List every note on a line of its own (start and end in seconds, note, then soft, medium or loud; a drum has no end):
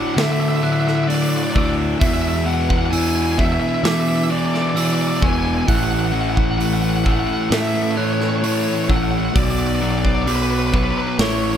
0.00 0.15 D2 medium
0.00 0.16 A2 medium
0.00 0.16 D3 medium
0.00 0.63 D6 medium
0.08 0.14 F#5 medium
0.15 0.61 D2 medium
0.15 0.62 A2 loud
0.15 1.34 D3 medium
0.15 0.63 D3 loud
0.15 0.24 E5 medium
0.15 0.22 F#5 medium
0.15 snare loud
0.15 open hi-hat medium
0.25 0.32 E5 medium
0.32 0.40 E5 medium
0.40 0.48 E5 medium
0.49 0.56 E5 medium
0.56 0.63 E5 medium
0.63 1.07 D2 medium
0.63 1.08 A2 medium
0.63 1.08 D3 medium
0.63 0.72 E5 medium
0.63 1.55 F#6 medium
0.73 0.80 E5 medium
0.81 0.87 E5 medium
0.87 0.95 E5 medium
0.87 snare soft
0.96 1.03 E5 medium
1.04 1.08 E5 medium
1.08 1.52 D2 loud
1.08 1.53 A2 loud
1.08 1.54 D3 medium
1.08 1.14 D5 loud
1.08 open hi-hat medium
1.15 1.22 D5 medium
1.23 1.29 D5 medium
1.29 1.36 D5 medium
1.37 1.43 D5 medium
1.43 1.51 D5 medium
1.51 1.98 D2 medium
1.51 1.98 A2 medium
1.51 1.98 D3 loud
1.51 1.58 D5 medium
1.51 2.47 E6 medium
1.56 1.94 D2 loud
1.56 1.65 D5 medium
1.56 kick medium
1.65 1.73 D5 medium
2.00 2.44 E2 loud
2.00 3.57 E2 loud
2.00 2.45 B2 loud
2.00 2.46 E3 loud
2.00 2.07 E5 loud
2.00 kick loud
2.00 open hi-hat medium
2.07 2.14 E5 medium
2.14 2.21 E5 medium
2.22 2.28 E5 medium
2.29 2.34 E5 medium
2.35 2.42 E5 medium
2.45 2.90 E2 medium
2.45 2.91 B2 loud
2.45 2.92 E3 medium
2.45 2.53 F#5 loud
2.54 2.62 F#5 medium
2.62 2.69 F#5 medium
2.69 2.77 F#5 medium
2.69 kick medium
2.78 2.86 F#5 medium
2.86 2.91 F#5 medium
2.91 3.36 E2 loud
2.91 3.37 B2 loud
2.91 3.38 E3 loud
2.91 2.98 G#5 loud
2.91 3.84 E6 medium
2.91 open hi-hat medium
2.98 3.06 G#5 medium
3.08 3.15 G#5 loud
3.16 3.23 G#5 medium
3.23 3.31 G#5 medium
3.31 3.39 G#5 medium
3.37 3.82 E2 medium
3.37 3.83 B2 loud
3.37 3.84 E3 medium
3.37 3.45 E5 loud
3.37 kick medium
3.45 3.52 E5 medium
3.53 3.60 E5 medium
3.60 3.68 E5 medium
3.69 3.74 E5 medium
3.75 3.82 E5 medium
3.83 4.28 E2 medium
3.83 4.29 B2 loud
3.83 5.01 E3 medium
3.83 4.30 E3 loud
3.83 3.91 E5 medium
3.83 4.76 D6 loud
3.83 snare loud
3.83 open hi-hat medium
3.91 3.99 E5 medium
4.01 4.08 E5 medium
4.08 4.16 E5 medium
4.16 4.24 E5 medium
4.24 4.30 E5 medium
4.29 4.74 E2 loud
4.29 4.75 B2 medium
4.29 4.75 E3 loud
4.29 4.38 D5 loud
4.38 4.45 D5 medium
4.45 4.53 D5 medium
4.54 4.62 D5 medium
4.54 snare soft
4.62 4.70 D5 medium
4.70 4.78 D5 medium
4.75 5.20 E2 loud
4.75 5.21 B2 medium
4.75 5.21 E3 loud
4.75 4.85 D5 medium
4.75 5.68 E6 medium
4.75 open hi-hat medium
4.86 4.93 D5 medium
4.94 5.01 D5 medium
5.01 5.09 D5 medium
5.09 5.17 D5 medium
5.17 5.25 D5 medium
5.21 5.61 E1 loud
5.21 5.65 E2 loud
5.21 5.65 B2 medium
5.21 5.65 E3 loud
5.21 5.30 G#5 loud
5.21 kick loud
5.30 5.38 G#5 medium
5.39 5.44 G#5 loud
5.45 5.53 G#5 medium
5.54 5.61 G#5 medium
5.62 5.68 G#5 medium
5.67 7.24 A1 loud
5.67 6.11 A2 loud
5.67 6.12 E3 loud
5.67 6.13 A3 loud
5.67 5.75 F#5 loud
5.67 6.60 F#6 medium
5.67 kick loud
5.67 open hi-hat medium
5.75 5.83 F#5 medium
5.84 5.90 F#5 medium
5.91 5.98 F#5 medium
5.99 6.05 F#5 medium
6.05 6.12 F#5 medium
6.12 6.57 A2 medium
6.12 6.58 E3 loud
6.12 6.59 A3 medium
6.12 6.20 F#5 medium
6.21 6.29 F#5 medium
6.30 6.36 F#5 loud
6.36 6.44 F#5 medium
6.36 kick medium
6.44 6.50 F#5 medium
6.51 6.58 F#5 medium
6.58 7.04 A2 loud
6.58 7.04 E3 loud
6.58 7.05 A3 loud
6.58 6.66 F#5 loud
6.58 open hi-hat medium
6.66 6.74 F#5 medium
6.74 6.81 F#5 loud
6.82 6.89 F#5 medium
6.90 6.96 F#5 medium
6.96 7.04 F#5 medium
7.05 7.49 A2 medium
7.05 7.50 E3 medium
7.05 7.50 A3 loud
7.05 7.12 F#5 medium
7.05 7.98 E6 medium
7.05 kick medium
7.12 7.19 F#5 medium
7.20 7.27 F#5 medium
7.27 7.33 F#5 medium
7.34 7.41 F#5 medium
7.41 7.49 F#5 medium
7.49 8.68 A2 loud
7.49 7.96 A2 loud
7.49 7.96 E3 loud
7.49 7.97 A3 loud
7.49 7.59 E5 loud
7.49 7.57 F#5 medium
7.49 snare loud
7.49 open hi-hat medium
7.59 7.67 E5 medium
7.68 7.75 E5 medium
7.75 7.82 E5 medium
7.82 7.90 E5 medium
7.91 7.96 E5 medium
7.97 8.41 A2 medium
7.97 8.42 E3 medium
7.97 8.42 A3 loud
7.97 8.05 C#5 loud
7.97 8.89 F#6 medium
8.05 8.12 C#5 medium
8.13 8.21 C#5 medium
8.21 8.28 C#5 medium
8.21 snare soft
8.29 8.36 C#5 loud
8.36 8.44 C#5 medium
8.43 8.87 A2 medium
8.43 8.88 E3 loud
8.43 8.89 A3 loud
8.43 8.52 C#5 loud
8.43 open hi-hat medium
8.52 8.60 C#5 medium
8.60 8.67 C#5 loud
8.67 8.75 C#5 medium
8.76 8.84 C#5 medium
8.84 8.92 C#5 medium
8.89 9.28 A1 loud
8.89 9.32 A2 loud
8.89 9.33 E3 medium
8.89 9.33 A3 loud
8.89 8.96 F#5 medium
8.89 9.81 E6 medium
8.89 kick loud
8.96 9.03 F#5 medium
9.04 9.11 F#5 medium
9.11 9.18 F#5 medium
9.19 9.24 F#5 medium
9.25 9.32 F#5 medium
9.35 10.91 B1 loud
9.35 9.80 B2 loud
9.35 9.80 F#3 loud
9.35 9.81 B3 loud
9.35 9.43 D5 loud
9.35 kick loud
9.35 open hi-hat medium
9.44 9.51 D5 medium
9.51 9.59 D5 medium
9.59 9.67 D5 medium
9.67 9.75 D5 medium
9.75 9.82 D5 medium
9.81 10.25 B2 medium
9.81 10.26 F#3 medium
9.81 10.27 B3 loud
9.81 9.90 D5 loud
9.91 9.98 D5 medium
9.98 10.06 D5 loud
10.05 10.14 D5 medium
10.05 kick medium
10.15 10.22 D5 medium
10.23 10.30 D5 medium
10.27 10.72 B2 medium
10.27 10.72 F#3 loud
10.27 10.73 B3 loud
10.27 10.35 B4 loud
10.27 11.19 D6 medium
10.27 open hi-hat medium
10.36 10.42 B4 medium
10.43 10.51 B4 medium
10.51 10.58 B4 medium
10.59 10.67 B4 medium
10.67 10.75 B4 medium
10.73 11.16 B2 medium
10.73 11.17 F#3 medium
10.73 11.17 B3 medium
10.73 10.83 B4 medium
10.73 kick loud
10.84 10.91 B4 medium
10.91 10.98 B4 medium
10.98 11.06 B4 medium
11.07 11.15 B4 medium
11.19 11.57 A1 loud
11.19 11.57 A2 loud
11.19 11.57 E3 loud
11.19 11.57 A3 loud
11.19 11.27 C#5 medium
11.19 11.57 C#6 loud
11.19 snare loud
11.19 open hi-hat medium
11.28 11.35 C#5 medium
11.35 11.43 C#5 medium
11.44 11.50 C#5 medium
11.51 11.57 C#5 medium